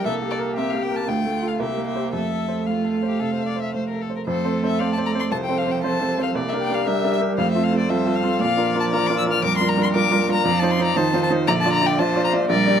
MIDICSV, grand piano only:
0, 0, Header, 1, 2, 480
1, 0, Start_track
1, 0, Key_signature, -1, "major"
1, 0, Tempo, 515907
1, 47, Time_signature, 4, 2, 24, 8
1, 1488, Tempo, 533333
1, 4368, Tempo, 512821
1, 11857, End_track
2, 0, Start_track
2, 0, Title_t, "Grand piano"
2, 0, Program_c, 0, 0
2, 0, Control_c, 0, 64, 127
2, 52, Note_on_c, 0, 36, 45
2, 66, Control_c, 0, 64, 0
2, 205, Note_on_c, 0, 67, 36
2, 211, Control_c, 0, 64, 127
2, 361, Note_on_c, 0, 70, 38
2, 460, Note_off_c, 0, 67, 0
2, 529, Note_on_c, 0, 60, 36
2, 617, Note_off_c, 0, 70, 0
2, 687, Note_on_c, 0, 67, 38
2, 781, Note_off_c, 0, 60, 0
2, 841, Note_on_c, 0, 70, 34
2, 940, Note_off_c, 0, 67, 0
2, 976, Note_off_c, 0, 36, 0
2, 1002, Note_off_c, 0, 70, 0
2, 1002, Note_on_c, 0, 38, 39
2, 1019, Control_c, 0, 64, 0
2, 1152, Control_c, 0, 64, 127
2, 1165, Note_on_c, 0, 57, 35
2, 1325, Note_on_c, 0, 65, 26
2, 1329, Note_on_c, 0, 69, 29
2, 1424, Note_off_c, 0, 57, 0
2, 1472, Note_off_c, 0, 65, 0
2, 1473, Note_off_c, 0, 38, 0
2, 1474, Note_off_c, 0, 69, 0
2, 1486, Note_on_c, 0, 36, 41
2, 1507, Control_c, 0, 64, 0
2, 1644, Note_on_c, 0, 58, 29
2, 1670, Control_c, 0, 64, 127
2, 1808, Note_on_c, 0, 67, 27
2, 1811, Note_on_c, 0, 72, 29
2, 1902, Note_off_c, 0, 58, 0
2, 1952, Note_off_c, 0, 36, 0
2, 1953, Note_off_c, 0, 67, 0
2, 1954, Note_off_c, 0, 72, 0
2, 1964, Note_on_c, 0, 41, 33
2, 1984, Control_c, 0, 64, 0
2, 2129, Note_on_c, 0, 69, 27
2, 2134, Control_c, 0, 64, 127
2, 2283, Note_on_c, 0, 72, 27
2, 2388, Note_off_c, 0, 69, 0
2, 2452, Note_on_c, 0, 57, 28
2, 2544, Note_off_c, 0, 72, 0
2, 2610, Note_on_c, 0, 69, 32
2, 2708, Note_off_c, 0, 57, 0
2, 2771, Note_on_c, 0, 72, 29
2, 2867, Note_off_c, 0, 69, 0
2, 2902, Note_off_c, 0, 41, 0
2, 2931, Note_on_c, 0, 48, 25
2, 3028, Note_off_c, 0, 72, 0
2, 3090, Note_on_c, 0, 69, 28
2, 3189, Note_off_c, 0, 48, 0
2, 3251, Note_on_c, 0, 72, 26
2, 3349, Note_off_c, 0, 69, 0
2, 3413, Note_on_c, 0, 57, 31
2, 3510, Note_off_c, 0, 72, 0
2, 3573, Note_on_c, 0, 69, 27
2, 3672, Note_off_c, 0, 57, 0
2, 3737, Note_on_c, 0, 72, 28
2, 3832, Note_off_c, 0, 69, 0
2, 3893, Note_on_c, 0, 41, 49
2, 3897, Note_off_c, 0, 72, 0
2, 3914, Control_c, 0, 64, 0
2, 4048, Note_off_c, 0, 41, 0
2, 4048, Note_on_c, 0, 60, 37
2, 4053, Note_on_c, 0, 69, 39
2, 4054, Note_on_c, 0, 72, 39
2, 4061, Control_c, 0, 64, 127
2, 4192, Note_off_c, 0, 60, 0
2, 4194, Note_off_c, 0, 69, 0
2, 4195, Note_off_c, 0, 72, 0
2, 4212, Note_on_c, 0, 60, 35
2, 4218, Note_on_c, 0, 69, 39
2, 4221, Note_on_c, 0, 72, 38
2, 4352, Note_off_c, 0, 60, 0
2, 4355, Note_off_c, 0, 69, 0
2, 4357, Note_off_c, 0, 72, 0
2, 4368, Note_on_c, 0, 60, 39
2, 4370, Note_on_c, 0, 69, 37
2, 4373, Note_on_c, 0, 72, 42
2, 4513, Note_off_c, 0, 60, 0
2, 4515, Note_off_c, 0, 69, 0
2, 4516, Note_off_c, 0, 72, 0
2, 4528, Note_on_c, 0, 60, 41
2, 4530, Note_on_c, 0, 69, 39
2, 4538, Note_on_c, 0, 72, 43
2, 4674, Note_off_c, 0, 60, 0
2, 4675, Note_off_c, 0, 69, 0
2, 4679, Note_off_c, 0, 72, 0
2, 4690, Note_on_c, 0, 60, 36
2, 4695, Note_on_c, 0, 69, 36
2, 4696, Note_on_c, 0, 72, 41
2, 4835, Note_off_c, 0, 60, 0
2, 4838, Note_off_c, 0, 69, 0
2, 4839, Note_off_c, 0, 72, 0
2, 4851, Note_on_c, 0, 36, 40
2, 5008, Note_off_c, 0, 36, 0
2, 5011, Note_on_c, 0, 60, 37
2, 5015, Note_on_c, 0, 69, 34
2, 5017, Note_on_c, 0, 72, 40
2, 5157, Note_off_c, 0, 60, 0
2, 5159, Note_off_c, 0, 69, 0
2, 5161, Note_off_c, 0, 72, 0
2, 5176, Note_on_c, 0, 60, 39
2, 5182, Note_on_c, 0, 69, 36
2, 5185, Note_on_c, 0, 72, 37
2, 5321, Note_off_c, 0, 60, 0
2, 5324, Note_off_c, 0, 69, 0
2, 5326, Note_off_c, 0, 72, 0
2, 5340, Note_on_c, 0, 60, 39
2, 5340, Note_on_c, 0, 69, 38
2, 5344, Note_on_c, 0, 72, 45
2, 5483, Note_off_c, 0, 60, 0
2, 5484, Note_off_c, 0, 69, 0
2, 5486, Note_off_c, 0, 72, 0
2, 5499, Note_on_c, 0, 60, 42
2, 5503, Note_on_c, 0, 69, 39
2, 5508, Note_on_c, 0, 72, 42
2, 5642, Note_off_c, 0, 60, 0
2, 5646, Note_off_c, 0, 69, 0
2, 5649, Note_off_c, 0, 72, 0
2, 5656, Note_on_c, 0, 60, 40
2, 5662, Note_on_c, 0, 69, 38
2, 5665, Note_on_c, 0, 72, 41
2, 5803, Note_off_c, 0, 60, 0
2, 5806, Note_off_c, 0, 69, 0
2, 5808, Note_off_c, 0, 72, 0
2, 5819, Note_on_c, 0, 36, 52
2, 5839, Control_c, 0, 64, 0
2, 5976, Note_off_c, 0, 36, 0
2, 5981, Control_c, 0, 64, 127
2, 5983, Note_on_c, 0, 62, 38
2, 5984, Note_on_c, 0, 67, 38
2, 5989, Note_on_c, 0, 70, 43
2, 6127, Note_off_c, 0, 62, 0
2, 6128, Note_off_c, 0, 67, 0
2, 6131, Note_off_c, 0, 70, 0
2, 6145, Note_on_c, 0, 62, 35
2, 6149, Note_on_c, 0, 67, 41
2, 6153, Note_on_c, 0, 70, 38
2, 6284, Note_off_c, 0, 62, 0
2, 6288, Note_off_c, 0, 67, 0
2, 6293, Note_off_c, 0, 70, 0
2, 6298, Note_on_c, 0, 62, 41
2, 6302, Note_on_c, 0, 67, 41
2, 6308, Note_on_c, 0, 70, 49
2, 6446, Note_off_c, 0, 62, 0
2, 6448, Note_off_c, 0, 67, 0
2, 6451, Note_off_c, 0, 70, 0
2, 6464, Note_on_c, 0, 62, 45
2, 6467, Note_on_c, 0, 67, 46
2, 6470, Note_on_c, 0, 70, 43
2, 6607, Note_off_c, 0, 62, 0
2, 6611, Note_off_c, 0, 67, 0
2, 6613, Note_off_c, 0, 70, 0
2, 6621, Note_on_c, 0, 62, 40
2, 6627, Note_on_c, 0, 67, 39
2, 6632, Note_on_c, 0, 70, 44
2, 6768, Note_off_c, 0, 62, 0
2, 6771, Note_off_c, 0, 67, 0
2, 6774, Note_off_c, 0, 70, 0
2, 6783, Note_on_c, 0, 41, 56
2, 6806, Control_c, 0, 64, 0
2, 6941, Note_off_c, 0, 41, 0
2, 6942, Note_on_c, 0, 60, 42
2, 6945, Note_on_c, 0, 65, 40
2, 6949, Note_on_c, 0, 69, 43
2, 6958, Control_c, 0, 64, 127
2, 7086, Note_off_c, 0, 60, 0
2, 7090, Note_off_c, 0, 65, 0
2, 7091, Note_off_c, 0, 69, 0
2, 7100, Note_on_c, 0, 60, 36
2, 7104, Note_on_c, 0, 65, 38
2, 7106, Note_on_c, 0, 69, 40
2, 7248, Note_off_c, 0, 60, 0
2, 7250, Note_off_c, 0, 65, 0
2, 7251, Note_off_c, 0, 69, 0
2, 7264, Note_on_c, 0, 60, 44
2, 7270, Note_on_c, 0, 65, 48
2, 7271, Note_on_c, 0, 69, 53
2, 7405, Note_off_c, 0, 60, 0
2, 7408, Note_off_c, 0, 65, 0
2, 7413, Note_off_c, 0, 69, 0
2, 7419, Note_on_c, 0, 60, 46
2, 7423, Note_on_c, 0, 65, 44
2, 7427, Note_on_c, 0, 69, 52
2, 7563, Note_off_c, 0, 60, 0
2, 7567, Note_off_c, 0, 65, 0
2, 7572, Note_off_c, 0, 69, 0
2, 7577, Note_on_c, 0, 60, 43
2, 7581, Note_on_c, 0, 65, 45
2, 7587, Note_on_c, 0, 69, 47
2, 7727, Note_off_c, 0, 60, 0
2, 7729, Note_off_c, 0, 65, 0
2, 7732, Note_off_c, 0, 69, 0
2, 7734, Note_on_c, 0, 46, 50
2, 7768, Control_c, 0, 64, 0
2, 7890, Control_c, 0, 64, 127
2, 7896, Note_on_c, 0, 62, 43
2, 7897, Note_off_c, 0, 46, 0
2, 7900, Note_on_c, 0, 65, 42
2, 7906, Note_on_c, 0, 70, 47
2, 8046, Note_off_c, 0, 62, 0
2, 8048, Note_off_c, 0, 65, 0
2, 8052, Note_off_c, 0, 70, 0
2, 8064, Note_on_c, 0, 62, 45
2, 8069, Note_on_c, 0, 65, 46
2, 8071, Note_on_c, 0, 70, 49
2, 8210, Note_off_c, 0, 62, 0
2, 8213, Note_off_c, 0, 65, 0
2, 8214, Note_off_c, 0, 70, 0
2, 8231, Note_on_c, 0, 62, 45
2, 8235, Note_on_c, 0, 65, 49
2, 8238, Note_on_c, 0, 70, 49
2, 8371, Note_off_c, 0, 62, 0
2, 8375, Note_off_c, 0, 65, 0
2, 8377, Note_off_c, 0, 70, 0
2, 8385, Note_on_c, 0, 62, 47
2, 8389, Note_on_c, 0, 65, 46
2, 8391, Note_on_c, 0, 70, 53
2, 8525, Note_off_c, 0, 62, 0
2, 8531, Note_off_c, 0, 65, 0
2, 8533, Note_off_c, 0, 70, 0
2, 8539, Note_on_c, 0, 62, 44
2, 8545, Note_on_c, 0, 65, 44
2, 8548, Note_on_c, 0, 70, 51
2, 8687, Note_off_c, 0, 62, 0
2, 8690, Note_off_c, 0, 65, 0
2, 8692, Note_off_c, 0, 70, 0
2, 8700, Note_on_c, 0, 41, 47
2, 8859, Note_off_c, 0, 41, 0
2, 8865, Note_on_c, 0, 62, 46
2, 8868, Note_on_c, 0, 65, 46
2, 8873, Note_on_c, 0, 70, 47
2, 9007, Note_off_c, 0, 62, 0
2, 9011, Note_off_c, 0, 65, 0
2, 9013, Note_off_c, 0, 70, 0
2, 9021, Note_on_c, 0, 62, 49
2, 9027, Note_on_c, 0, 65, 45
2, 9028, Note_on_c, 0, 70, 49
2, 9166, Note_off_c, 0, 62, 0
2, 9169, Note_off_c, 0, 65, 0
2, 9170, Note_off_c, 0, 70, 0
2, 9180, Note_on_c, 0, 62, 50
2, 9184, Note_on_c, 0, 65, 50
2, 9189, Note_on_c, 0, 70, 53
2, 9324, Note_off_c, 0, 62, 0
2, 9327, Note_off_c, 0, 65, 0
2, 9331, Note_off_c, 0, 70, 0
2, 9339, Note_on_c, 0, 62, 46
2, 9341, Note_on_c, 0, 65, 48
2, 9348, Note_on_c, 0, 70, 53
2, 9485, Note_off_c, 0, 62, 0
2, 9486, Note_off_c, 0, 65, 0
2, 9490, Note_off_c, 0, 70, 0
2, 9502, Note_on_c, 0, 62, 48
2, 9507, Note_on_c, 0, 65, 51
2, 9509, Note_on_c, 0, 70, 54
2, 9646, Note_off_c, 0, 62, 0
2, 9649, Note_off_c, 0, 65, 0
2, 9650, Note_off_c, 0, 70, 0
2, 9659, Note_on_c, 0, 41, 58
2, 9682, Control_c, 0, 64, 0
2, 9815, Note_off_c, 0, 41, 0
2, 9817, Note_on_c, 0, 63, 46
2, 9821, Note_on_c, 0, 65, 49
2, 9822, Control_c, 0, 64, 127
2, 9825, Note_on_c, 0, 72, 55
2, 9961, Note_off_c, 0, 63, 0
2, 9963, Note_off_c, 0, 65, 0
2, 9966, Note_off_c, 0, 72, 0
2, 9975, Note_on_c, 0, 63, 42
2, 9977, Note_on_c, 0, 65, 45
2, 9983, Note_on_c, 0, 72, 46
2, 10120, Note_off_c, 0, 63, 0
2, 10122, Note_off_c, 0, 65, 0
2, 10125, Note_off_c, 0, 72, 0
2, 10137, Note_on_c, 0, 63, 53
2, 10141, Note_on_c, 0, 65, 50
2, 10146, Note_on_c, 0, 72, 60
2, 10281, Note_off_c, 0, 63, 0
2, 10284, Note_off_c, 0, 65, 0
2, 10286, Note_off_c, 0, 72, 0
2, 10298, Note_on_c, 0, 63, 52
2, 10302, Note_on_c, 0, 65, 58
2, 10306, Note_on_c, 0, 72, 54
2, 10441, Note_off_c, 0, 63, 0
2, 10444, Note_off_c, 0, 65, 0
2, 10446, Note_off_c, 0, 72, 0
2, 10456, Note_on_c, 0, 63, 48
2, 10460, Note_on_c, 0, 65, 53
2, 10465, Note_on_c, 0, 72, 51
2, 10601, Note_off_c, 0, 63, 0
2, 10602, Note_off_c, 0, 65, 0
2, 10605, Note_off_c, 0, 72, 0
2, 10620, Note_on_c, 0, 34, 69
2, 10636, Control_c, 0, 64, 0
2, 10774, Note_off_c, 0, 34, 0
2, 10778, Note_on_c, 0, 62, 53
2, 10784, Note_on_c, 0, 65, 51
2, 10786, Note_on_c, 0, 74, 57
2, 10790, Control_c, 0, 64, 127
2, 10920, Note_off_c, 0, 62, 0
2, 10923, Note_off_c, 0, 65, 0
2, 10926, Note_off_c, 0, 74, 0
2, 10934, Note_on_c, 0, 62, 48
2, 10937, Note_on_c, 0, 65, 45
2, 10943, Note_on_c, 0, 74, 52
2, 11079, Note_off_c, 0, 62, 0
2, 11080, Note_off_c, 0, 65, 0
2, 11083, Note_off_c, 0, 74, 0
2, 11097, Note_on_c, 0, 62, 53
2, 11100, Note_on_c, 0, 65, 57
2, 11102, Note_on_c, 0, 74, 59
2, 11238, Note_off_c, 0, 62, 0
2, 11241, Note_off_c, 0, 65, 0
2, 11242, Note_off_c, 0, 74, 0
2, 11252, Note_on_c, 0, 62, 53
2, 11257, Note_on_c, 0, 65, 57
2, 11261, Note_on_c, 0, 74, 60
2, 11396, Note_off_c, 0, 62, 0
2, 11399, Note_off_c, 0, 65, 0
2, 11400, Note_off_c, 0, 74, 0
2, 11416, Note_on_c, 0, 62, 49
2, 11420, Note_on_c, 0, 65, 52
2, 11425, Note_on_c, 0, 74, 61
2, 11557, Note_off_c, 0, 62, 0
2, 11559, Note_off_c, 0, 65, 0
2, 11562, Note_off_c, 0, 74, 0
2, 11569, Note_on_c, 0, 34, 68
2, 11590, Control_c, 0, 64, 0
2, 11724, Note_off_c, 0, 34, 0
2, 11731, Note_on_c, 0, 62, 55
2, 11733, Control_c, 0, 64, 127
2, 11734, Note_on_c, 0, 67, 47
2, 11737, Note_on_c, 0, 74, 55
2, 11857, Note_off_c, 0, 62, 0
2, 11857, Note_off_c, 0, 67, 0
2, 11857, Note_off_c, 0, 74, 0
2, 11857, End_track
0, 0, End_of_file